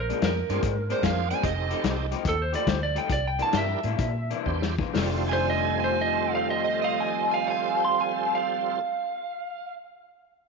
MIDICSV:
0, 0, Header, 1, 7, 480
1, 0, Start_track
1, 0, Tempo, 404585
1, 1711, Time_signature, 4, 2, 24, 8
1, 2676, Tempo, 433526
1, 4596, Tempo, 481541
1, 5556, Tempo, 503778
1, 10826, End_track
2, 0, Start_track
2, 0, Title_t, "Electric slide guitar"
2, 0, Program_c, 0, 29
2, 1088, Note_on_c, 0, 72, 80
2, 1233, Note_off_c, 0, 72, 0
2, 1233, Note_on_c, 0, 77, 83
2, 1546, Note_off_c, 0, 77, 0
2, 1554, Note_on_c, 0, 80, 89
2, 1705, Note_off_c, 0, 80, 0
2, 1709, Note_on_c, 0, 75, 93
2, 2176, Note_off_c, 0, 75, 0
2, 5879, Note_on_c, 0, 80, 73
2, 6344, Note_off_c, 0, 80, 0
2, 6363, Note_on_c, 0, 80, 72
2, 6859, Note_off_c, 0, 80, 0
2, 6859, Note_on_c, 0, 77, 69
2, 7158, Note_off_c, 0, 77, 0
2, 7167, Note_on_c, 0, 75, 84
2, 7317, Note_off_c, 0, 75, 0
2, 7335, Note_on_c, 0, 75, 67
2, 7791, Note_off_c, 0, 75, 0
2, 7805, Note_on_c, 0, 80, 75
2, 7955, Note_off_c, 0, 80, 0
2, 7957, Note_on_c, 0, 77, 74
2, 10119, Note_off_c, 0, 77, 0
2, 10826, End_track
3, 0, Start_track
3, 0, Title_t, "Lead electric guitar"
3, 0, Program_c, 1, 29
3, 3, Note_on_c, 1, 70, 63
3, 281, Note_off_c, 1, 70, 0
3, 295, Note_on_c, 1, 70, 82
3, 1678, Note_off_c, 1, 70, 0
3, 2711, Note_on_c, 1, 69, 93
3, 2843, Note_off_c, 1, 69, 0
3, 2857, Note_on_c, 1, 72, 67
3, 2993, Note_off_c, 1, 72, 0
3, 3006, Note_on_c, 1, 74, 71
3, 3158, Note_off_c, 1, 74, 0
3, 3158, Note_on_c, 1, 72, 80
3, 3300, Note_off_c, 1, 72, 0
3, 3313, Note_on_c, 1, 74, 81
3, 3456, Note_off_c, 1, 74, 0
3, 3479, Note_on_c, 1, 79, 76
3, 3619, Note_off_c, 1, 79, 0
3, 3637, Note_on_c, 1, 74, 73
3, 3779, Note_off_c, 1, 74, 0
3, 3804, Note_on_c, 1, 79, 69
3, 3945, Note_off_c, 1, 79, 0
3, 3969, Note_on_c, 1, 81, 78
3, 4110, Note_off_c, 1, 81, 0
3, 4134, Note_on_c, 1, 76, 77
3, 5057, Note_off_c, 1, 76, 0
3, 5916, Note_on_c, 1, 72, 79
3, 6050, Note_off_c, 1, 72, 0
3, 6075, Note_on_c, 1, 75, 73
3, 6371, Note_off_c, 1, 75, 0
3, 6402, Note_on_c, 1, 72, 69
3, 6533, Note_off_c, 1, 72, 0
3, 6568, Note_on_c, 1, 75, 70
3, 6857, Note_off_c, 1, 75, 0
3, 6887, Note_on_c, 1, 77, 82
3, 7015, Note_off_c, 1, 77, 0
3, 7033, Note_on_c, 1, 75, 83
3, 7330, Note_off_c, 1, 75, 0
3, 7357, Note_on_c, 1, 77, 78
3, 7490, Note_off_c, 1, 77, 0
3, 7511, Note_on_c, 1, 80, 78
3, 7809, Note_off_c, 1, 80, 0
3, 7829, Note_on_c, 1, 77, 90
3, 7966, Note_off_c, 1, 77, 0
3, 7986, Note_on_c, 1, 80, 73
3, 8286, Note_off_c, 1, 80, 0
3, 8313, Note_on_c, 1, 84, 78
3, 8448, Note_off_c, 1, 84, 0
3, 8468, Note_on_c, 1, 80, 75
3, 8767, Note_off_c, 1, 80, 0
3, 8793, Note_on_c, 1, 77, 80
3, 10136, Note_off_c, 1, 77, 0
3, 10826, End_track
4, 0, Start_track
4, 0, Title_t, "Tonewheel organ"
4, 0, Program_c, 2, 16
4, 586, Note_on_c, 2, 60, 72
4, 588, Note_on_c, 2, 62, 62
4, 599, Note_on_c, 2, 65, 67
4, 605, Note_on_c, 2, 68, 78
4, 732, Note_off_c, 2, 60, 0
4, 733, Note_off_c, 2, 62, 0
4, 739, Note_off_c, 2, 65, 0
4, 742, Note_off_c, 2, 68, 0
4, 1217, Note_on_c, 2, 60, 58
4, 1227, Note_on_c, 2, 62, 59
4, 1231, Note_on_c, 2, 65, 51
4, 1235, Note_on_c, 2, 68, 68
4, 1516, Note_off_c, 2, 60, 0
4, 1521, Note_off_c, 2, 62, 0
4, 1523, Note_off_c, 2, 65, 0
4, 1525, Note_off_c, 2, 68, 0
4, 1692, Note_on_c, 2, 60, 62
4, 1697, Note_on_c, 2, 63, 56
4, 1702, Note_on_c, 2, 67, 59
4, 1708, Note_on_c, 2, 69, 67
4, 2443, Note_off_c, 2, 60, 0
4, 2446, Note_off_c, 2, 63, 0
4, 2448, Note_off_c, 2, 67, 0
4, 2451, Note_off_c, 2, 69, 0
4, 4074, Note_on_c, 2, 62, 50
4, 4083, Note_on_c, 2, 64, 48
4, 4088, Note_on_c, 2, 67, 45
4, 4093, Note_on_c, 2, 70, 61
4, 4388, Note_off_c, 2, 62, 0
4, 4392, Note_off_c, 2, 64, 0
4, 4395, Note_off_c, 2, 67, 0
4, 4397, Note_off_c, 2, 70, 0
4, 5052, Note_on_c, 2, 62, 53
4, 5057, Note_on_c, 2, 64, 47
4, 5064, Note_on_c, 2, 67, 52
4, 5068, Note_on_c, 2, 72, 57
4, 5355, Note_off_c, 2, 62, 0
4, 5357, Note_off_c, 2, 64, 0
4, 5360, Note_off_c, 2, 67, 0
4, 5363, Note_off_c, 2, 72, 0
4, 5537, Note_on_c, 2, 55, 66
4, 5545, Note_on_c, 2, 60, 59
4, 5551, Note_on_c, 2, 65, 56
4, 5566, Note_on_c, 2, 69, 71
4, 9207, Note_off_c, 2, 55, 0
4, 9214, Note_off_c, 2, 60, 0
4, 9220, Note_off_c, 2, 65, 0
4, 9235, Note_off_c, 2, 69, 0
4, 10826, End_track
5, 0, Start_track
5, 0, Title_t, "Clean electric guitar"
5, 0, Program_c, 3, 27
5, 110, Note_on_c, 3, 62, 80
5, 117, Note_on_c, 3, 60, 82
5, 121, Note_on_c, 3, 56, 81
5, 129, Note_on_c, 3, 46, 78
5, 368, Note_off_c, 3, 62, 0
5, 371, Note_off_c, 3, 60, 0
5, 373, Note_off_c, 3, 56, 0
5, 377, Note_off_c, 3, 46, 0
5, 594, Note_on_c, 3, 62, 69
5, 597, Note_on_c, 3, 60, 71
5, 603, Note_on_c, 3, 56, 66
5, 607, Note_on_c, 3, 46, 62
5, 849, Note_off_c, 3, 62, 0
5, 850, Note_off_c, 3, 60, 0
5, 853, Note_off_c, 3, 56, 0
5, 855, Note_off_c, 3, 46, 0
5, 1066, Note_on_c, 3, 62, 80
5, 1070, Note_on_c, 3, 60, 88
5, 1074, Note_on_c, 3, 56, 69
5, 1078, Note_on_c, 3, 46, 72
5, 1324, Note_off_c, 3, 62, 0
5, 1326, Note_off_c, 3, 60, 0
5, 1328, Note_off_c, 3, 56, 0
5, 1330, Note_off_c, 3, 46, 0
5, 1546, Note_on_c, 3, 62, 72
5, 1552, Note_on_c, 3, 60, 72
5, 1558, Note_on_c, 3, 56, 59
5, 1559, Note_on_c, 3, 46, 59
5, 1706, Note_off_c, 3, 62, 0
5, 1709, Note_off_c, 3, 60, 0
5, 1712, Note_off_c, 3, 56, 0
5, 1713, Note_off_c, 3, 46, 0
5, 2023, Note_on_c, 3, 67, 95
5, 2028, Note_on_c, 3, 63, 87
5, 2031, Note_on_c, 3, 57, 79
5, 2038, Note_on_c, 3, 53, 73
5, 2283, Note_off_c, 3, 67, 0
5, 2286, Note_off_c, 3, 63, 0
5, 2287, Note_off_c, 3, 57, 0
5, 2291, Note_off_c, 3, 53, 0
5, 2509, Note_on_c, 3, 67, 79
5, 2516, Note_on_c, 3, 57, 62
5, 2516, Note_on_c, 3, 63, 74
5, 2521, Note_on_c, 3, 53, 64
5, 2765, Note_off_c, 3, 67, 0
5, 2768, Note_off_c, 3, 57, 0
5, 2768, Note_off_c, 3, 63, 0
5, 2771, Note_off_c, 3, 53, 0
5, 2975, Note_on_c, 3, 67, 97
5, 2985, Note_on_c, 3, 63, 89
5, 2986, Note_on_c, 3, 57, 74
5, 2991, Note_on_c, 3, 53, 71
5, 3227, Note_off_c, 3, 67, 0
5, 3231, Note_off_c, 3, 63, 0
5, 3232, Note_off_c, 3, 57, 0
5, 3235, Note_off_c, 3, 53, 0
5, 3449, Note_on_c, 3, 67, 71
5, 3452, Note_on_c, 3, 63, 72
5, 3455, Note_on_c, 3, 57, 70
5, 3460, Note_on_c, 3, 53, 56
5, 3607, Note_off_c, 3, 67, 0
5, 3608, Note_off_c, 3, 63, 0
5, 3610, Note_off_c, 3, 57, 0
5, 3612, Note_off_c, 3, 53, 0
5, 3929, Note_on_c, 3, 62, 89
5, 3934, Note_on_c, 3, 58, 89
5, 3940, Note_on_c, 3, 52, 84
5, 3941, Note_on_c, 3, 48, 77
5, 4192, Note_off_c, 3, 62, 0
5, 4194, Note_off_c, 3, 58, 0
5, 4197, Note_off_c, 3, 52, 0
5, 4198, Note_off_c, 3, 48, 0
5, 4430, Note_on_c, 3, 62, 68
5, 4434, Note_on_c, 3, 58, 70
5, 4439, Note_on_c, 3, 52, 61
5, 4440, Note_on_c, 3, 48, 61
5, 4689, Note_off_c, 3, 62, 0
5, 4691, Note_off_c, 3, 58, 0
5, 4694, Note_off_c, 3, 48, 0
5, 4694, Note_off_c, 3, 52, 0
5, 4910, Note_on_c, 3, 62, 85
5, 4912, Note_on_c, 3, 58, 87
5, 4918, Note_on_c, 3, 48, 66
5, 4919, Note_on_c, 3, 52, 73
5, 5163, Note_off_c, 3, 62, 0
5, 5164, Note_off_c, 3, 58, 0
5, 5167, Note_off_c, 3, 48, 0
5, 5167, Note_off_c, 3, 52, 0
5, 5394, Note_on_c, 3, 62, 65
5, 5399, Note_on_c, 3, 52, 64
5, 5400, Note_on_c, 3, 58, 62
5, 5404, Note_on_c, 3, 48, 56
5, 5541, Note_on_c, 3, 41, 90
5, 5554, Note_off_c, 3, 52, 0
5, 5556, Note_off_c, 3, 62, 0
5, 5557, Note_on_c, 3, 51, 81
5, 5559, Note_off_c, 3, 58, 0
5, 5561, Note_off_c, 3, 48, 0
5, 5568, Note_on_c, 3, 57, 102
5, 5579, Note_on_c, 3, 62, 97
5, 9211, Note_off_c, 3, 41, 0
5, 9227, Note_off_c, 3, 51, 0
5, 9237, Note_off_c, 3, 57, 0
5, 9249, Note_off_c, 3, 62, 0
5, 10826, End_track
6, 0, Start_track
6, 0, Title_t, "Fingered electric bass"
6, 0, Program_c, 4, 33
6, 0, Note_on_c, 4, 34, 83
6, 127, Note_off_c, 4, 34, 0
6, 263, Note_on_c, 4, 41, 82
6, 494, Note_off_c, 4, 41, 0
6, 586, Note_on_c, 4, 43, 78
6, 699, Note_off_c, 4, 43, 0
6, 749, Note_on_c, 4, 44, 86
6, 1086, Note_off_c, 4, 44, 0
6, 1222, Note_on_c, 4, 41, 92
6, 1561, Note_off_c, 4, 41, 0
6, 1700, Note_on_c, 4, 29, 89
6, 2040, Note_off_c, 4, 29, 0
6, 2180, Note_on_c, 4, 36, 84
6, 2524, Note_off_c, 4, 36, 0
6, 2666, Note_on_c, 4, 39, 87
6, 2993, Note_off_c, 4, 39, 0
6, 3132, Note_on_c, 4, 38, 87
6, 3465, Note_off_c, 4, 38, 0
6, 3606, Note_on_c, 4, 36, 89
6, 3947, Note_off_c, 4, 36, 0
6, 4090, Note_on_c, 4, 43, 84
6, 4328, Note_off_c, 4, 43, 0
6, 4431, Note_on_c, 4, 45, 78
6, 4546, Note_off_c, 4, 45, 0
6, 4594, Note_on_c, 4, 46, 75
6, 4924, Note_off_c, 4, 46, 0
6, 5068, Note_on_c, 4, 40, 89
6, 5411, Note_off_c, 4, 40, 0
6, 5557, Note_on_c, 4, 29, 86
6, 9188, Note_off_c, 4, 29, 0
6, 10826, End_track
7, 0, Start_track
7, 0, Title_t, "Drums"
7, 118, Note_on_c, 9, 42, 54
7, 237, Note_off_c, 9, 42, 0
7, 261, Note_on_c, 9, 42, 76
7, 266, Note_on_c, 9, 38, 100
7, 380, Note_off_c, 9, 42, 0
7, 385, Note_off_c, 9, 38, 0
7, 591, Note_on_c, 9, 42, 61
7, 709, Note_off_c, 9, 42, 0
7, 743, Note_on_c, 9, 42, 75
7, 746, Note_on_c, 9, 36, 102
7, 862, Note_off_c, 9, 42, 0
7, 865, Note_off_c, 9, 36, 0
7, 1070, Note_on_c, 9, 42, 53
7, 1189, Note_off_c, 9, 42, 0
7, 1224, Note_on_c, 9, 42, 76
7, 1225, Note_on_c, 9, 36, 73
7, 1229, Note_on_c, 9, 38, 97
7, 1343, Note_off_c, 9, 36, 0
7, 1343, Note_off_c, 9, 42, 0
7, 1348, Note_off_c, 9, 38, 0
7, 1550, Note_on_c, 9, 42, 57
7, 1668, Note_off_c, 9, 42, 0
7, 1702, Note_on_c, 9, 36, 111
7, 1705, Note_on_c, 9, 42, 80
7, 1821, Note_off_c, 9, 36, 0
7, 1823, Note_off_c, 9, 42, 0
7, 2025, Note_on_c, 9, 42, 59
7, 2144, Note_off_c, 9, 42, 0
7, 2185, Note_on_c, 9, 42, 75
7, 2189, Note_on_c, 9, 38, 96
7, 2303, Note_off_c, 9, 42, 0
7, 2308, Note_off_c, 9, 38, 0
7, 2513, Note_on_c, 9, 42, 60
7, 2631, Note_off_c, 9, 42, 0
7, 2670, Note_on_c, 9, 36, 104
7, 2673, Note_on_c, 9, 42, 83
7, 2781, Note_off_c, 9, 36, 0
7, 2784, Note_off_c, 9, 42, 0
7, 2987, Note_on_c, 9, 42, 65
7, 3098, Note_off_c, 9, 42, 0
7, 3134, Note_on_c, 9, 36, 69
7, 3137, Note_on_c, 9, 42, 76
7, 3141, Note_on_c, 9, 38, 109
7, 3244, Note_off_c, 9, 36, 0
7, 3248, Note_off_c, 9, 42, 0
7, 3252, Note_off_c, 9, 38, 0
7, 3456, Note_on_c, 9, 42, 66
7, 3566, Note_off_c, 9, 42, 0
7, 3605, Note_on_c, 9, 36, 104
7, 3608, Note_on_c, 9, 42, 85
7, 3716, Note_off_c, 9, 36, 0
7, 3719, Note_off_c, 9, 42, 0
7, 3932, Note_on_c, 9, 42, 55
7, 4043, Note_off_c, 9, 42, 0
7, 4085, Note_on_c, 9, 42, 75
7, 4089, Note_on_c, 9, 38, 103
7, 4195, Note_off_c, 9, 42, 0
7, 4200, Note_off_c, 9, 38, 0
7, 4425, Note_on_c, 9, 42, 60
7, 4535, Note_off_c, 9, 42, 0
7, 4593, Note_on_c, 9, 42, 76
7, 4594, Note_on_c, 9, 36, 102
7, 4693, Note_off_c, 9, 42, 0
7, 4694, Note_off_c, 9, 36, 0
7, 4913, Note_on_c, 9, 42, 55
7, 5013, Note_off_c, 9, 42, 0
7, 5066, Note_on_c, 9, 36, 54
7, 5165, Note_off_c, 9, 36, 0
7, 5229, Note_on_c, 9, 38, 64
7, 5329, Note_off_c, 9, 38, 0
7, 5389, Note_on_c, 9, 36, 94
7, 5489, Note_off_c, 9, 36, 0
7, 5557, Note_on_c, 9, 46, 83
7, 5561, Note_on_c, 9, 38, 96
7, 5652, Note_off_c, 9, 46, 0
7, 5656, Note_off_c, 9, 38, 0
7, 10826, End_track
0, 0, End_of_file